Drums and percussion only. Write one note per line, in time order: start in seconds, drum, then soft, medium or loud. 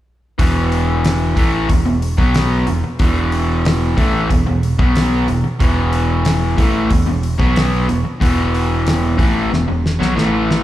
0.39 kick medium
0.39 open hi-hat medium
0.72 open hi-hat soft
1.04 snare loud
1.04 open hi-hat medium
1.37 kick loud
1.37 open hi-hat medium
1.69 kick medium
1.69 open hi-hat medium
2.02 open hi-hat medium
2.18 kick loud
2.34 snare loud
2.34 open hi-hat medium
2.67 open hi-hat soft
2.99 kick loud
2.99 open hi-hat medium
3.32 open hi-hat medium
3.65 snare loud
3.65 open hi-hat medium
3.98 kick loud
3.98 open hi-hat medium
4.30 kick medium
4.30 open hi-hat medium
4.63 open hi-hat medium
4.79 kick loud
4.95 snare loud
4.95 open hi-hat medium
5.28 open hi-hat soft
5.60 kick loud
5.60 open hi-hat medium
5.93 open hi-hat medium
6.25 snare loud
6.25 open hi-hat medium
6.58 kick loud
6.58 open hi-hat medium
6.90 kick medium
6.90 open hi-hat medium
7.23 open hi-hat medium
7.40 kick loud
7.56 snare medium
7.56 open hi-hat medium
7.89 open hi-hat medium
8.21 kick medium
8.21 open hi-hat medium
8.55 open hi-hat medium
8.87 snare loud
8.87 open hi-hat medium
9.19 kick loud
9.19 open hi-hat medium
9.53 snare medium
9.86 snare medium
10.02 snare medium
10.18 snare medium
10.51 snare medium